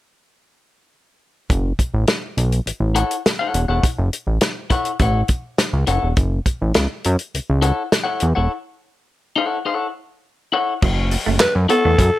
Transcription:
1.50 F#1, kick, closed hi-hat
1.79 kick, closed hi-hat
1.94 A1
2.07 snare, closed hi-hat
2.37 B1, closed hi-hat
2.52 closed hi-hat
2.66 A1, closed hi-hat
2.80 A1
2.95 E4 A4 C#5 F#5, closed hi-hat
3.11 closed hi-hat
3.26 snare, closed hi-hat
3.39 E4 A4 C#5 F#5
3.54 E1, closed hi-hat
3.68 E1 E4 A4 C#5 F#5
3.83 kick, closed hi-hat
3.98 F#1
4.13 closed hi-hat
4.27 A1
4.41 snare, closed hi-hat
4.70 E4 A4 C#5 F#5, kick, closed hi-hat
4.85 closed hi-hat
4.99 A1 E4 A4 C#5 F#5, kick, closed hi-hat
5.28 kick, closed hi-hat
5.58 snare, closed hi-hat
5.73 C#2
5.87 F#1 E4 A4 C#5 F#5, closed hi-hat
6.03 E1
6.17 F#1, kick, closed hi-hat
6.46 kick, closed hi-hat
6.61 A1
6.74 C#2, snare, closed hi-hat
7.04 F#2, closed hi-hat
7.19 closed hi-hat
7.34 C#2, closed hi-hat
7.50 C#2
7.62 E4 A4 C#5 F#5, closed hi-hat
7.92 snare, closed hi-hat
8.04 E4 A4 C#5 F#5
8.20 E2, closed hi-hat
8.35 E1 E4 A4 C#5 F#5
9.36 E4 A4 C#5 F#5
9.65 E4 A4 C#5 F#5
10.52 E4 A4 C#5 F#5
10.82 F#1 F#3, kick, crash
11.11 muted clean electric guitar stroke, open hi-hat
11.26 F#1 A3
11.39 F#2 B4, muted clean electric guitar stroke, snare, clap, closed hi-hat
11.55 F#2
11.69 B3 E4 A4 C#5 F#5, closed hi-hat
11.85 E2 A3
11.99 F#2, muted clean electric guitar stroke, kick, closed hi-hat

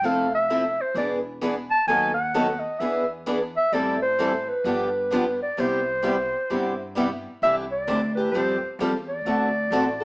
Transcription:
0.02 F1 F3 C4 E4 A4 F5
0.35 E5
0.50 F3 C4 E4 A4
0.81 C5
0.94 E1 E3 B3 D4 G#4 B4 D5
1.42 E3 B3 D4 G#4 B4
1.70 A5
1.87 D#2 D#3 F#3 B3 D#4 A4 G#5
2.14 F#5
2.34 D#3 F#3 B3 D#4 A4
2.59 D#5
2.79 E2 E3 B3 D4 G#4 B4 E5
3.27 E3 B3 D4 G#4 B4
3.57 E5
3.72 A1 E3 G3 C4 E4 A4 D5
4.02 C5
4.20 E3 G3 C4 E4 A4
4.49 B4
4.64 G1 D3 F3 B3 D4 G4
5.11 D3 F3 B3 D4 G4
5.42 D5
5.57 C2 C3 G3 B3 E4 G4 C5
6.04 C3 G3 B3 E4 G4
6.50 G2 C3 G3 B3 E4 G4
6.95 C3 G3 B3 E4 G4
7.42 C2 C3 D3 E3 G3 C4 D4 E4 G4 C5 E5
7.72 D5
7.87 D2 C3 D3 E3 G3 C4 D4 E4 G4 C5
8.15 D4 G4 B4
8.20 E3
8.31 F2 F3 G3 C4 F4 A4 C5
8.36 G4
8.62 muted upright bass stroke
8.79 E2 F3 G3 C4 F4 G4 A4
9.08 D5
9.25 D2 D3 A3 C4 F#4 A4
9.71 A1 D3 A3 C4 F#4 A4
10.00 A4

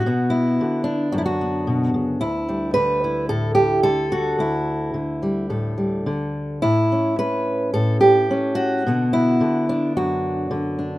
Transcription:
Already playing: F#4
0.06 B2 B3
0.30 E4
0.60 D3
0.84 D4
1.12 F#2 F#4
1.18 E4
1.26 F#4
1.41 B3
1.67 B2
1.94 C#3
2.21 D2 E4
2.49 G3
2.74 D3 B4
3.04 E4
3.29 A2 A4
3.55 G4
3.83 D3 A4
4.12 F#4
4.39 D2 E4
4.94 D3
5.23 G3
5.50 A2 A4
5.78 G3
6.06 D3
6.62 A2 E4
6.92 C#4
7.19 C#4 B4
7.74 A2 A4
8.01 G4
8.31 C#4
8.55 F#4
8.86 B2 D3 B3
9.13 E4
9.40 D3
9.69 D4
9.97 F#2 F#4
10.51 D3
10.79 D4

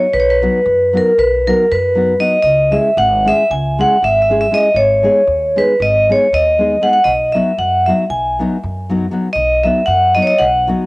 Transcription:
Already playing: C#5
0.13 B1 B4
0.20 C#5
0.30 B4
0.42 F#3 B3 D#4 F#4
0.66 F#2
0.93 F#3 B3 D#4 F#4
0.97 A#4
1.18 B1 B4
1.47 F#3 B3 D#4 F#4 A#4
1.71 F#2 B4
1.95 F#3 B3 D#4 F#4
2.19 F#3 B3 D#4 F#4 D#5
2.43 C#2 D#5
2.71 G#3 C#4 E4 G#4 E5
2.97 G#1 F#5
3.25 G#3 C#4 E4 G#4 E5
3.50 C#2 G#5
3.79 G#3 C#4 E4 G#4 F#5
4.02 G#1 E5
4.22 E5
4.29 G#3 C#4 E4 G#4
4.41 E5
4.51 G#3 C#4 E4 G#4 D#5
4.74 G#1 C#5
5.03 G#3 B3 D#4 G#4
5.27 D#2
5.56 G#3 B3 D#4 G#4 B4
5.80 G#1 D#5
6.09 G#3 B3 D#4 G#4 C#5
6.33 D#2 D#5
6.59 G#3 B3 D#4 G#4
6.81 G#3 B3 D#4 G#4 F#5
6.89 F#5
7.04 B1 D#5
7.32 F#3 B3 D#4 F#4 E5
7.58 F#2 F#5
7.86 F#3 B3 D#4 F#4 E5
8.10 B1 G#5
8.39 F#3 B3 D#4 F#4
8.63 F#2
8.90 F#3 B3 D#4 F#4
9.11 F#3 B3 D#4 F#4
9.33 B1 D#5
9.64 F#3 B3 D#4 F#4 E5
9.86 F#2 F#5
10.15 F#3 B3 D#4 F#4 D#5
10.22 C#5
10.27 D#5
10.39 B1 F#5
10.67 F#3 B3 D#4 F#4

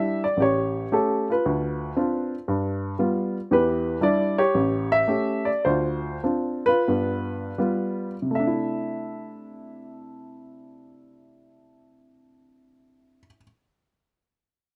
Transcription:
Already playing: G3 D4 E4 G4 E5
0.24 D5
0.37 A1 G4
0.42 C#5
0.92 A3 C#4 G4 A4
1.30 F4 B4
1.46 D2
1.97 C4 D4 F4
2.48 G2
2.99 G3 B3 F4
3.51 E2 E3 G4 B4
4.01 G3 D4 E4 D5
4.38 G4 C#5
4.54 A1
4.92 E5
5.08 A3 C#4 G4
5.45 D5
5.65 D2 F4 C5
6.24 C4 D4 F4
6.66 F4 B4
6.88 G2 B3
7.58 G3 B3 F4
8.22 C3
8.31 A3
8.35 E5
8.39 D4
8.47 E4

